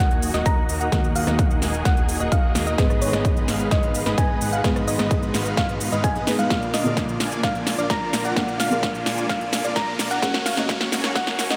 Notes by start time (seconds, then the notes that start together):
Already playing: D#3 F#3 A#3 D#4 F#4 A#4 D#5, riser
0.00 F#5
0.11 D#1 A#3 D#4 F#4 D#5 G#5, closed hi-hat
0.22 open hi-hat, cabasa
0.34 D#1 A#3 D#4 F#4 D#5 F#5, snare, closed hi-hat, cabasa
0.46 D#1 A#3 D#4 F#4 D#5 F#5 A#5, kick, closed hi-hat, cabasa
0.69 D#1 A#3 D#4 F#4 D#5 A#5, open hi-hat, cabasa
0.81 F#5, closed hi-hat, cabasa
0.92 D#1 D#3 A#3 D#4 F#4 G#4 A#4 D#5 F#5, kick, snare, closed hi-hat, cabasa
1.04 cabasa
1.16 F5, open hi-hat, cabasa
1.26 D#1 D#3 A#3 D#4 F#4 D#5 F#5, cross-stick, snare, closed hi-hat, cabasa
1.39 kick, closed hi-hat, cabasa
1.50 D#1 A#3 D#4 F#4 D#5 F#5, cabasa
1.62 D#1 A#3 D#4 F#4 D#5 G#5, snare, open hi-hat, cabasa
1.74 closed hi-hat, cabasa
1.85 D#1 A#3 D#4 F#4 D#5 F5 F#5, kick, snare, closed hi-hat, cabasa
1.97 D#1 A#3 D#4 F#4 D#5 G#5, closed hi-hat
2.09 open hi-hat, cabasa
2.20 D#1 A#3 D#4 F#4 D#5 F#5, closed hi-hat, cabasa
2.32 D#1 A#3 D#4 F#4 D#5 F5 F#5, kick, closed hi-hat, cabasa
2.55 D#2 A#3 D#4 F#4 D#5 A#5, snare, open hi-hat, cabasa
2.67 D#5, closed hi-hat, cabasa
2.78 G#1 G#2 G#3 B3 D#4 G#4 B4 D#5, kick, snare, closed hi-hat, cabasa
2.90 cross-stick, cabasa
3.02 C#5, open hi-hat, cabasa
3.12 G#1 G#2 G#3 B3 D#4 G#4 B4 D#5, cross-stick, snare, cabasa
3.25 kick, closed hi-hat, cabasa
3.37 G#1 G#3 B3 D#4 B4 D#5, cabasa
3.48 G#1 G#3 B3 D#4 B4 F5, snare, open hi-hat, cabasa
3.60 closed hi-hat, cabasa
3.71 G#1 G#3 B3 D#4 B4 C#5 D#5, kick, snare, closed hi-hat, cabasa
3.83 G#1 G#3 B3 D#4 B4 F5, closed hi-hat
3.95 open hi-hat, cabasa
4.06 G#1 G#3 B3 D#4 B4 D#5, snare, closed hi-hat, cabasa
4.18 G#1 G#3 B3 D#4 B4 D#5 G#5, kick, closed hi-hat, cabasa
4.41 G#1 G#3 B3 D#4 B4 F#5, open hi-hat, cabasa
4.53 F5, closed hi-hat, cabasa
4.64 G#1 G#2 G#3 B3 D#4 F#4 G#4 B4 D#5, kick, snare, closed hi-hat, cabasa
4.76 cross-stick, cabasa
4.88 D#5, open hi-hat, cabasa
4.98 G#1 G#2 G#3 B3 D#4 G#4 B4 D#5, cross-stick, snare, closed hi-hat, cabasa
5.11 kick, closed hi-hat, cabasa
5.22 G#1 G#3 B3 D#4 B4 D#5, cabasa
5.34 G#1 G#3 B3 D#4 B4 F5, snare, open hi-hat, cabasa
5.46 closed hi-hat, cabasa
5.57 G#1 G#3 B3 D#4 B4 C#5 F5, kick, snare, closed hi-hat, cabasa
5.69 G#1 G#3 B3 D#4 B4 F5, closed hi-hat
5.81 open hi-hat, cabasa
5.92 G#1 G#3 B3 D#4 B4 D#5 F5, closed hi-hat, cabasa
6.04 G#5, kick, closed hi-hat, cabasa
6.15 G#1 G#3 B3 D#4 B4 D#5, closed hi-hat
6.27 B3 D#4 G#4 B4, snare, open hi-hat, cabasa
6.39 G#2 G#3 B3 D#4 B4 F5 F#5, closed hi-hat, cabasa
6.50 A#1 A#2 D3 F3 A#3 D4 F4 A#4 D5 F5, kick, snare, closed hi-hat, cabasa
6.62 cabasa
6.74 D#5, snare, open hi-hat, cabasa
6.84 A#1 A#2 D3 A#3 D4 F4 A#4 D5 F5, closed hi-hat, cabasa
6.97 kick, snare, closed hi-hat, cabasa
7.09 A#1 A#3 D4 F4 D5 F5, cabasa
7.20 A#1 A#3 D4 F4 D5 G#5, snare, open hi-hat, cabasa
7.32 closed hi-hat, cabasa
7.43 A#1 A#3 D4 F4 D5 F5, kick, snare, closed hi-hat, cabasa
7.55 A#1 A#3 D4 F4 D5 G#5, closed hi-hat
7.67 snare, open hi-hat, cabasa
7.78 A#1 A#3 D4 F4 D5 F5, closed hi-hat, cabasa
7.90 A#1 A#3 D4 F4 D5 F5 A#5, kick, snare, closed hi-hat, cabasa
8.13 A#1 A#3 D4 F4 D5 A#5, snare, open hi-hat, cabasa
8.25 F#5, closed hi-hat, cabasa
8.36 A#1 A#2 G#3 A#3 D4 F4 A#4 D5 F5, kick, snare, closed hi-hat, cabasa
8.48 cabasa
8.60 F5, snare, open hi-hat, cabasa
8.70 A#1 A#2 A#3 D4 F4 A#4 D5 F5, closed hi-hat, cabasa
8.83 kick, snare, closed hi-hat, cabasa
8.95 A#1 A#3 D4 F4 D5 F5, cabasa
9.06 A#1 A#3 D4 F4 D5 G#5, snare, open hi-hat, cabasa
9.18 closed hi-hat, cabasa
9.29 A#1 A#3 D4 F4 D5 F5, kick, snare, closed hi-hat, cabasa
9.41 A#1 A#3 D4 F4 D5 G#5, closed hi-hat
9.53 snare, open hi-hat, cabasa
9.64 A#1 A#3 D4 F4 D5 F5, closed hi-hat, cabasa
9.76 A#1 A#3 D4 F4 D5 F5 A#5, kick, snare, closed hi-hat, cabasa
9.99 A#1 A#3 D4 F4 D5 A#5, snare, open hi-hat, cabasa
10.11 F#5, closed hi-hat, cabasa
10.22 F#1 C#3 F#3 A#3 C#4 F#4 A#4 C#5 F#5, kick, snare, closed hi-hat, cabasa
10.34 snare, cabasa
10.46 F5, snare, open hi-hat, cabasa
10.56 F#1 A#3 C#4 F#4 C#5 D#5 F#5, snare, closed hi-hat, cabasa
10.69 kick, snare, closed hi-hat, cabasa
10.81 F#1 A#3 C#4 F#4 C#5 F#5, snare, cabasa
10.92 F#1 A#3 C#4 F#4 C#5 G#5, snare, open hi-hat, cabasa
11.04 snare, closed hi-hat, cabasa
11.15 F#1 A#3 C#4 F#4 C#5 D#5 F#5, kick, snare, closed hi-hat, cabasa
11.27 F#1 A#3 C#4 F#4 C#5 G#5, snare, closed hi-hat
11.39 snare, open hi-hat, cabasa
11.50 F#1 A#3 C#4 F#4 C#5 D#5 F#5, snare, closed hi-hat, cabasa